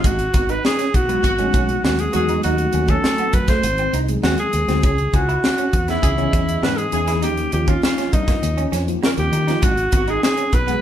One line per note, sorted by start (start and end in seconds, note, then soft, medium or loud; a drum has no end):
0.04 0.27 G#1 medium
0.04 0.17 G#3 medium
0.04 0.35 F#4 medium
0.04 kick medium
0.04 closed hi-hat medium
0.19 closed hi-hat soft
0.34 0.56 G#1 medium
0.34 0.46 D#3 medium
0.34 0.46 B3 medium
0.34 0.46 F#4 medium
0.34 0.52 F#4 medium
0.34 muted clean electric guitar stroke soft
0.34 kick medium
0.34 closed hi-hat medium
0.49 0.62 D#4 medium
0.49 0.65 B4 medium
0.49 closed hi-hat soft
0.65 0.97 G#4 medium
0.65 snare medium
0.79 0.91 C#4 medium
0.79 snare soft
0.79 closed hi-hat soft
0.94 1.17 B1 medium
0.94 1.84 F#4 medium
0.94 muted clean electric guitar stroke soft
0.94 kick medium
0.94 closed hi-hat medium
1.07 1.37 F#3 medium
1.07 1.37 G#3 medium
1.07 1.37 B3 medium
1.07 1.22 B3 medium
1.07 1.37 D#4 medium
1.07 1.37 F#4 medium
1.07 closed hi-hat soft
1.23 1.46 G#1 medium
1.23 1.33 D#3 medium
1.23 1.33 B3 medium
1.23 1.33 F#4 loud
1.23 muted clean electric guitar stroke soft
1.23 kick medium
1.23 closed hi-hat medium
1.38 2.10 F#3 medium
1.38 2.10 G#3 medium
1.38 1.46 A3 medium
1.38 1.52 C#4 medium
1.38 2.10 D#4 medium
1.38 2.10 F#4 medium
1.38 closed hi-hat soft
1.46 2.12 B3 medium
1.54 1.76 B1 medium
1.54 1.67 C#4 medium
1.54 kick medium
1.54 closed hi-hat medium
1.69 closed hi-hat soft
1.84 2.06 D#2 medium
1.84 1.97 B3 medium
1.84 2.02 F#4 medium
1.84 snare medium
1.99 2.14 G#4 medium
1.99 closed hi-hat soft
2.13 2.37 E2 medium
2.13 2.33 D#3 medium
2.13 2.42 F#3 medium
2.13 2.42 G#3 medium
2.13 2.32 B3 medium
2.13 2.42 B3 medium
2.13 2.42 D#4 medium
2.13 2.32 F#4 medium
2.13 2.42 F#4 medium
2.13 2.42 G#4 medium
2.13 muted clean electric guitar stroke soft
2.13 closed hi-hat medium
2.29 2.42 D#4 medium
2.29 closed hi-hat medium
2.43 2.67 D#2 medium
2.43 2.72 F#3 medium
2.43 2.72 A3 medium
2.43 2.72 C#4 medium
2.43 2.57 D#4 medium
2.43 2.73 D#4 medium
2.43 2.91 F#4 medium
2.43 2.73 F#4 medium
2.43 closed hi-hat medium
2.58 closed hi-hat soft
2.73 2.96 D#2 medium
2.73 3.63 F#3 medium
2.73 3.64 A3 medium
2.73 3.64 C#4 medium
2.73 3.64 D#4 soft
2.73 3.64 G#5 medium
2.73 muted clean electric guitar stroke soft
2.73 closed hi-hat medium
2.88 3.02 C#4 medium
2.88 3.35 A4 medium
2.88 kick medium
2.88 closed hi-hat soft
3.04 snare medium
3.18 3.32 B3 medium
3.18 closed hi-hat soft
3.33 3.56 F#2 medium
3.33 3.50 B4 medium
3.33 muted clean electric guitar stroke soft
3.33 kick medium
3.33 closed hi-hat medium
3.48 3.61 A3 medium
3.48 3.96 C5 loud
3.48 kick medium
3.48 snare soft
3.48 closed hi-hat soft
3.63 3.86 G#1 medium
3.63 muted clean electric guitar stroke soft
3.63 closed hi-hat medium
3.78 3.91 C4 medium
3.78 closed hi-hat soft
3.93 4.16 C2 medium
3.93 4.07 D#4 medium
3.93 closed hi-hat medium
4.08 4.65 F#3 medium
4.08 4.65 G#3 medium
4.08 4.65 C4 medium
4.08 4.65 D#4 medium
4.08 4.66 G#4 medium
4.08 closed hi-hat soft
4.23 4.35 D#2 medium
4.23 4.36 C4 medium
4.23 4.37 F#4 medium
4.23 snare medium
4.38 4.81 G#4 medium
4.38 closed hi-hat soft
4.53 4.65 D#2 medium
4.53 muted clean electric guitar stroke soft
4.53 closed hi-hat medium
4.68 4.80 D2 medium
4.68 4.83 F#3 medium
4.68 4.83 G#3 medium
4.68 4.81 C4 medium
4.68 4.84 C4 medium
4.68 4.84 D#4 medium
4.68 4.84 F#4 medium
4.68 snare soft
4.68 closed hi-hat soft
4.83 5.06 C#2 medium
4.83 4.96 C#4 medium
4.83 5.17 G#4 medium
4.83 kick medium
4.83 closed hi-hat medium
4.98 closed hi-hat soft
5.12 5.36 C#2 medium
5.12 5.26 E3 medium
5.12 5.26 C#4 medium
5.12 5.89 F#4 medium
5.12 5.25 G#4 medium
5.12 muted clean electric guitar stroke soft
5.12 kick medium
5.12 closed hi-hat medium
5.29 5.41 E4 medium
5.29 closed hi-hat soft
5.44 snare medium
5.58 5.71 C#4 medium
5.58 closed hi-hat soft
5.73 5.96 E2 medium
5.73 muted clean electric guitar stroke soft
5.73 kick medium
5.73 closed hi-hat medium
5.88 6.16 E3 medium
5.88 6.17 B3 medium
5.88 6.01 B3 medium
5.88 6.17 C#4 medium
5.88 6.17 D#4 medium
5.88 6.65 E4 medium
5.88 6.17 G#4 medium
5.88 snare soft
5.88 closed hi-hat soft
6.02 6.26 C#2 medium
6.02 6.12 E3 medium
6.02 6.12 C#4 medium
6.02 6.12 G#4 medium
6.02 muted clean electric guitar stroke soft
6.02 kick medium
6.02 closed hi-hat medium
6.17 6.89 E3 medium
6.17 6.89 B3 medium
6.17 6.89 C#4 medium
6.17 6.31 C#4 medium
6.17 6.89 G#4 medium
6.17 6.89 D#5 medium
6.17 closed hi-hat soft
6.33 6.56 E2 medium
6.33 6.46 C#4 medium
6.33 kick medium
6.33 closed hi-hat medium
6.49 closed hi-hat soft
6.63 6.86 G#2 medium
6.63 6.75 B3 medium
6.63 6.79 B4 medium
6.63 snare medium
6.78 7.22 G#4 medium
6.78 closed hi-hat soft
6.92 7.23 E2 medium
6.92 7.12 E3 medium
6.92 7.22 E3 medium
6.92 7.22 B3 medium
6.92 7.12 C#4 medium
6.92 7.22 C#4 medium
6.92 7.22 D#4 medium
6.92 7.12 G#4 medium
6.92 7.22 G#4 medium
6.92 muted clean electric guitar stroke soft
6.92 closed hi-hat medium
7.07 7.21 E4 medium
7.07 snare soft
7.07 closed hi-hat soft
7.22 7.46 D#2 loud
7.22 7.51 F3 medium
7.22 7.52 A#3 medium
7.22 7.52 C#4 medium
7.22 7.35 D#4 medium
7.22 7.52 D#4 medium
7.22 7.51 G4 medium
7.22 7.52 G4 medium
7.22 closed hi-hat medium
7.37 closed hi-hat soft
7.52 7.76 D#2 medium
7.52 8.66 F3 medium
7.52 8.67 A#3 medium
7.52 8.67 C#4 medium
7.52 8.67 D#4 medium
7.52 8.67 F4 medium
7.52 7.70 G4 medium
7.52 muted clean electric guitar stroke soft
7.52 closed hi-hat medium
7.68 7.81 C#4 medium
7.68 7.83 F4 medium
7.68 kick medium
7.68 closed hi-hat soft
7.83 8.11 F4 medium
7.83 snare medium
7.98 8.11 C#4 medium
7.98 snare soft
7.98 closed hi-hat soft
8.12 8.36 G2 medium
8.12 8.72 D#4 medium
8.12 muted clean electric guitar stroke soft
8.12 kick medium
8.12 closed hi-hat medium
8.28 8.40 A#3 medium
8.28 kick medium
8.28 snare soft
8.28 closed hi-hat medium
8.42 8.65 D#2 medium
8.42 muted clean electric guitar stroke soft
8.42 closed hi-hat medium
8.57 8.70 C#4 medium
8.57 closed hi-hat soft
8.72 8.95 F2 medium
8.72 8.85 C#4 medium
8.72 snare soft
8.72 closed hi-hat medium
8.87 9.44 F3 medium
8.87 9.45 A#3 medium
8.87 9.45 C#4 medium
8.87 9.45 D#4 medium
8.87 8.95 F4 medium
8.87 closed hi-hat soft
8.95 9.48 G4 medium
9.03 9.15 A#3 medium
9.03 9.11 A#4 medium
9.03 snare medium
9.17 9.29 D#2 medium
9.17 9.66 G4 medium
9.17 closed hi-hat soft
9.32 9.55 D#3 medium
9.32 muted clean electric guitar stroke soft
9.32 closed hi-hat medium
9.47 9.63 F3 medium
9.47 9.63 A#3 medium
9.47 9.63 C#4 medium
9.47 9.60 D#4 medium
9.47 9.63 D#4 medium
9.47 9.64 F4 medium
9.47 snare soft
9.47 closed hi-hat soft
9.62 9.86 G#1 medium
9.62 9.75 G#3 medium
9.62 9.94 F#4 medium
9.62 kick medium
9.62 closed hi-hat medium
9.77 closed hi-hat soft
9.92 10.15 G#1 medium
9.92 10.06 D#3 medium
9.92 10.05 B3 medium
9.92 10.06 F#4 medium
9.92 10.12 F#4 medium
9.92 muted clean electric guitar stroke soft
9.92 kick medium
9.92 closed hi-hat medium
10.08 10.20 D#4 medium
10.08 10.23 G#4 medium
10.08 closed hi-hat soft
10.23 10.55 G#4 medium
10.23 snare medium
10.37 10.50 C#4 medium
10.37 closed hi-hat soft
10.53 10.75 B1 medium
10.53 10.81 B4 loud
10.53 muted clean electric guitar stroke soft
10.53 kick medium
10.53 closed hi-hat medium
10.67 10.81 F#3 medium
10.67 10.81 G#3 medium
10.67 10.80 B3 medium
10.67 10.81 B3 medium
10.67 10.81 D#4 medium
10.67 10.81 G#4 medium
10.67 closed hi-hat soft